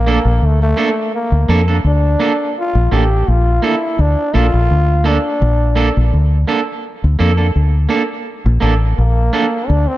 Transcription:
Already playing: fingered electric bass A#1, trombone A#3
0.06 clean electric guitar A#3 D4 A4
0.25 fingered electric bass A#1
0.42 fingered electric bass D2, trombone A3
0.63 trombone A3
0.77 clean electric guitar A#3 D4 A4
1.15 trombone A#3
1.32 fingered electric bass D2
1.48 fingered electric bass F2, clean electric guitar A#3 D4 A4
1.68 clean electric guitar A#3 D4 A4
1.84 fingered electric bass D2, trombone D4
2.20 clean electric guitar A#3 D4 A4
2.59 trombone F4
2.75 fingered electric bass A#1
2.91 fingered electric bass A1, clean electric guitar A#3 D4 A4, trombone G4
3.28 fingered electric bass A#1, trombone F4
3.62 clean electric guitar A#3 D4 A4, trombone E4
3.99 fingered electric bass D2, trombone D4
4.34 fingered electric bass A#1, clean electric guitar A#3 D4 A4, trombone F4
4.54 fingered electric bass A#1
4.71 fingered electric bass D2
5.04 clean electric guitar A#3 D4 A4, trombone D4
5.42 fingered electric bass A#1
5.76 clean electric guitar A#3 D4 A4
5.97 fingered electric bass A#1
6.14 fingered electric bass D2
6.47 clean electric guitar A#3 D4 A4
7.04 fingered electric bass D2
7.19 fingered electric bass F2, clean electric guitar A#3 D4 A4
7.37 clean electric guitar A#3 D4 A4
7.56 fingered electric bass D2
7.89 clean electric guitar A#3 D4 A4
8.46 fingered electric bass A#1
8.60 fingered electric bass A1, clean electric guitar A#3 D4 A4
8.98 fingered electric bass A#1, trombone A#3
9.33 clean electric guitar A#3 D4 A4
9.68 fingered electric bass D2, trombone D4
9.87 trombone C4

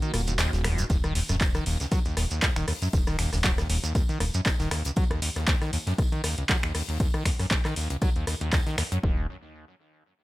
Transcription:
Already playing: analog synth pad D#3 A#3 F#4
0.02 acid bass D#3, closed hi-hat, shekere
0.14 analog synth bass D#1, acid bass A#2, cross-stick, open hi-hat, tambourine
0.27 acid bass D#2, closed hi-hat, shekere
0.38 acid bass D#2, cross-stick, snare, clap, closed hi-hat, tambourine, shekere
0.53 acid bass D#1, analog synth bass D#1, snare, closed hi-hat, shekere
0.64 acid bass F2, finger snap, cross-stick, snare, open hi-hat, tambourine
0.78 acid bass G#2, closed hi-hat, shekere
0.90 analog synth bass D#1, acid bass D#2, kick, closed hi-hat, tambourine, shekere
1.04 acid bass D#3, cross-stick, closed hi-hat, shekere
1.15 acid bass D#2, open hi-hat, tambourine
1.29 analog synth bass D#1, acid bass F#2, cross-stick, snare, closed hi-hat, shekere
1.41 acid bass D#1, kick, snare, clap, closed hi-hat, tambourine, shekere
1.54 acid bass D#3, cross-stick, snare, closed hi-hat, shekere
1.66 analog synth bass D#1, acid bass D#2, open hi-hat, tambourine
1.80 acid bass C#2, snare, closed hi-hat, shekere
1.91 acid bass F#3, kick, cross-stick, closed hi-hat, tambourine, shekere
2.05 acid bass D#2, closed hi-hat, shekere
2.17 analog synth bass D#1, acid bass D#2, cross-stick, snare, open hi-hat, tambourine
2.31 acid bass D#2, closed hi-hat, shekere
2.42 acid bass D#2, kick, cross-stick, snare, clap, closed hi-hat, tambourine, shekere
2.56 analog synth bass D#1, acid bass D#3, finger snap, snare, closed hi-hat, shekere
2.68 acid bass D#2, cross-stick, open hi-hat
2.82 acid bass F#2, closed hi-hat, shekere
2.93 analog synth bass D#1, acid bass D#1, kick, closed hi-hat, tambourine, shekere
3.07 acid bass D#3, cross-stick, closed hi-hat, shekere
3.19 acid bass D#2, finger snap, snare, open hi-hat, tambourine
3.33 analog synth bass D#1, acid bass C#2, cross-stick, snare, open hi-hat, shekere
3.44 acid bass F#3, kick, snare, clap, closed hi-hat, tambourine, shekere
3.58 acid bass D#2, cross-stick, snare, closed hi-hat, shekere
3.70 analog synth bass D#1, acid bass D#2, open hi-hat, tambourine
3.84 acid bass D#2, closed hi-hat, shekere
3.95 kick, cross-stick, closed hi-hat, tambourine, shekere
4.09 acid bass D#3, closed hi-hat, shekere
4.20 analog synth bass D#1, acid bass D#2, cross-stick, open hi-hat, tambourine
4.34 acid bass F#2, closed hi-hat, shekere
4.45 acid bass D#1, kick, cross-stick, snare, clap, closed hi-hat, tambourine, shekere
4.60 analog synth bass D#1, acid bass D#3, snare, closed hi-hat, shekere
4.71 acid bass D#2, finger snap, cross-stick, snare, open hi-hat, tambourine
4.85 acid bass C#2, closed hi-hat, shekere
4.96 acid bass F#3, kick, closed hi-hat, tambourine
5.11 acid bass D#2, cross-stick, closed hi-hat
5.22 acid bass D#2, open hi-hat, tambourine
5.36 acid bass D#2, cross-stick, snare, closed hi-hat
5.47 acid bass D#2, kick, snare, clap, closed hi-hat, tambourine
5.61 acid bass D#3, cross-stick, snare, closed hi-hat
5.73 acid bass D#2, open hi-hat, tambourine
5.87 acid bass F#2, snare, closed hi-hat
5.98 acid bass D#1, kick, cross-stick, closed hi-hat, tambourine
6.12 acid bass D#3, closed hi-hat
6.24 acid bass D#2, cross-stick, snare, open hi-hat, tambourine
6.38 acid bass C#2, closed hi-hat
6.49 acid bass F#3, kick, cross-stick, snare, clap, closed hi-hat, tambourine
6.63 acid bass D#2, finger snap, snare, closed hi-hat
6.75 acid bass D#2, cross-stick, open hi-hat
6.89 acid bass D#2, closed hi-hat
7.00 kick, closed hi-hat, tambourine
7.14 acid bass D#3, cross-stick, closed hi-hat
7.25 acid bass D#2, finger snap, kick, snare, open hi-hat, tambourine
7.39 acid bass F#2, cross-stick, snare, open hi-hat
7.50 acid bass D#1, kick, snare, clap, closed hi-hat, tambourine
7.65 acid bass D#3, cross-stick, snare, clap, closed hi-hat
7.76 acid bass D#2, open hi-hat, tambourine
7.90 acid bass C#2, closed hi-hat
8.02 acid bass F#3, kick, cross-stick, closed hi-hat, tambourine
8.16 acid bass D#2, closed hi-hat
8.27 acid bass D#2, cross-stick, open hi-hat, tambourine
8.41 acid bass D#2, closed hi-hat
8.53 acid bass D#2, kick, cross-stick, snare, clap, closed hi-hat, tambourine
8.66 acid bass D#3, snare, closed hi-hat
8.78 acid bass D#2, finger snap, cross-stick, snare, open hi-hat, tambourine
8.92 acid bass F#2, closed hi-hat
9.03 analog synth bass D#1, acid bass D#2, kick

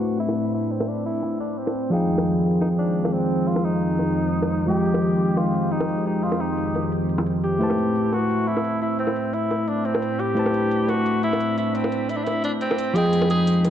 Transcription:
Already playing: analog synth pad A2 C4 D4 B5, tine electric piano A3 E4 B4 C5 A5, tenor saxophone F#4
0.02 closed hi-hat
0.20 tenor saxophone E4, closed hi-hat
0.28 high bongo
0.37 closed hi-hat
0.54 tenor saxophone E4, closed hi-hat
0.71 tenor saxophone C4, closed hi-hat
0.80 high bongo
0.89 tenor saxophone D4, closed hi-hat
1.06 tenor saxophone E4, closed hi-hat
1.23 closed hi-hat, high bongo
1.40 tenor saxophone D4, closed hi-hat
1.58 tenor saxophone C4, closed hi-hat
1.67 high bongo
1.75 closed hi-hat
1.90 analog synth pad F2 D#3 G#3, tine electric piano F3 F4 G#4 F5, tenor saxophone D#4, closed hi-hat
1.94 tine electric piano G5
2.09 closed hi-hat
2.18 high bongo
2.26 closed hi-hat
2.44 closed hi-hat
2.61 tenor saxophone D#4, closed hi-hat, high bongo
2.78 tenor saxophone D4, closed hi-hat
2.95 closed hi-hat
3.05 high bongo
3.13 tenor saxophone C4, closed hi-hat
3.30 closed hi-hat
3.47 tenor saxophone F4, closed hi-hat
3.56 high bongo
3.64 tenor saxophone D#4, closed hi-hat
3.82 closed hi-hat
3.99 closed hi-hat, high bongo
4.16 closed hi-hat
4.33 closed hi-hat
4.42 high bongo
4.51 closed hi-hat
4.66 tine electric piano F3 G#3 F4 D#5, analog synth pad G4, tenor saxophone G4, closed hi-hat
4.70 tine electric piano G5
4.85 closed hi-hat
4.94 high bongo
5.02 closed hi-hat
5.20 closed hi-hat
5.37 tenor saxophone F4, closed hi-hat, high bongo
5.54 closed hi-hat
5.71 tenor saxophone D#4, closed hi-hat
5.80 high bongo
5.89 closed hi-hat
6.06 tenor saxophone D#4, closed hi-hat
6.23 tenor saxophone F4, closed hi-hat
6.32 high bongo
6.40 tenor saxophone D#4, closed hi-hat
6.58 closed hi-hat
6.75 closed hi-hat, high bongo
6.92 closed hi-hat
7.09 closed hi-hat
7.18 high bongo
7.26 closed hi-hat
7.44 tenor saxophone G4, closed hi-hat
7.59 analog synth pad A2 C4 E4 B5, tine electric piano A3 E4 B4 C5, closed hi-hat
7.63 tine electric piano A5
7.70 high bongo
7.78 closed hi-hat
7.96 closed hi-hat
8.13 tenor saxophone F#4, closed hi-hat, high bongo
8.30 closed hi-hat
8.47 tenor saxophone E4, closed hi-hat
8.57 high bongo
8.64 closed hi-hat
8.82 tenor saxophone E4, closed hi-hat
8.99 tenor saxophone C4, closed hi-hat
9.07 high bongo
9.16 closed hi-hat
9.33 tenor saxophone E4, closed hi-hat
9.51 closed hi-hat, high bongo
9.68 tenor saxophone D4, closed hi-hat
9.85 tenor saxophone C4, closed hi-hat
9.95 high bongo
10.02 closed hi-hat
10.20 tenor saxophone G4, closed hi-hat
10.35 tine electric piano A3 E4 B4 C5, analog synth pad D4, closed hi-hat
10.39 tine electric piano A5
10.46 high bongo
10.54 closed hi-hat
10.71 closed hi-hat
10.89 tenor saxophone F#4, closed hi-hat, high bongo
11.06 closed hi-hat
11.23 tenor saxophone E4, closed hi-hat
11.33 high bongo
11.40 closed hi-hat
11.58 tenor saxophone E4, closed hi-hat
11.75 tenor saxophone C4, closed hi-hat
11.84 high bongo
11.92 closed hi-hat
12.09 tenor saxophone E4, closed hi-hat
12.17 tenor saxophone D4
12.24 tenor saxophone E4, closed hi-hat, high bongo
12.44 tenor saxophone D4, closed hi-hat
12.61 tenor saxophone C4, closed hi-hat
12.71 high bongo
12.78 closed hi-hat
12.93 analog synth pad F2 G#3 D#4, tine electric piano F3 F4 G#4 D#5, tenor saxophone G#4, closed hi-hat
12.98 tine electric piano G5
13.13 closed hi-hat
13.22 high bongo
13.30 tenor saxophone G#4, closed hi-hat
13.47 closed hi-hat
13.65 closed hi-hat, high bongo

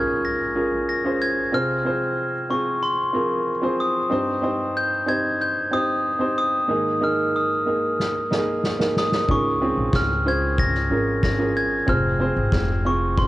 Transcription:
Already playing: upright piano G#2 C#4 F4 G#4 A#4, glockenspiel G#6, impact
0.25 glockenspiel A#6
0.55 upright piano C#4 F4 G#4 A#4
0.89 glockenspiel A#6
1.04 upright piano C#4 F4 G#4 C5
1.22 glockenspiel G#6
1.52 upright piano C3 C4 F4 G#4 C5, glockenspiel F6
1.85 upright piano C4 F4 G#4 C5
2.50 upright piano C4 F4 G#4, glockenspiel C#6
2.83 glockenspiel C6
3.13 upright piano C4 F4 G#4 A#4
3.62 upright piano C4 F4 G#4 C5
3.80 glockenspiel D#6
4.10 upright piano G2 C4 D#4 G4 C5
4.42 upright piano C4 D#4 G4 C5
4.77 glockenspiel G6
5.06 upright piano C4 D#4 G4 C5, glockenspiel G#6
5.42 glockenspiel G6
5.71 upright piano C4 D#4 G4 C5, glockenspiel D#6
6.19 upright piano C4 D#4 G4 C5
6.38 glockenspiel D#6
6.68 upright piano G#2 D#3 A#3 D#4 G#4 A#4
7.01 upright piano A#3 D#4 G#4 A#4, glockenspiel F6
7.36 glockenspiel D#6
7.66 upright piano A#3 D#4 G#4 A#4
8.00 snare
8.30 upright piano A#3 D#4 G#4 A#4, snare
8.64 snare
8.79 upright piano A#3 D#4 G#4 A#4, snare
8.96 glockenspiel D#6, snare
9.12 snare
9.28 upright bass C#2, upright piano G#2 C#4 F4 G#4 A#4, glockenspiel C#6, kick
9.61 upright piano C4 C#4 F4 G#4
9.77 upright bass A#1
9.93 upright bass C#2, glockenspiel F6, kick, snare
10.25 upright piano C#4 F4 G#4 C5, glockenspiel G#6
10.58 glockenspiel A#6, kick
10.75 snare
10.90 upright bass G#1, upright piano C#4 F4 G#4 A#4
11.23 glockenspiel A#6, kick, snare
11.38 upright piano C#4 F4 G#4 A#4
11.57 glockenspiel G#6
11.86 upright bass F1, upright piano C3 C4 F4 G#4 C5, glockenspiel F6, kick
12.20 upright piano C4 F4 G#4 C5
12.36 upright bass G#1
12.52 upright bass F1, kick, snare
12.85 upright piano C4 F4 G#4, glockenspiel C#6
13.17 glockenspiel C6, kick

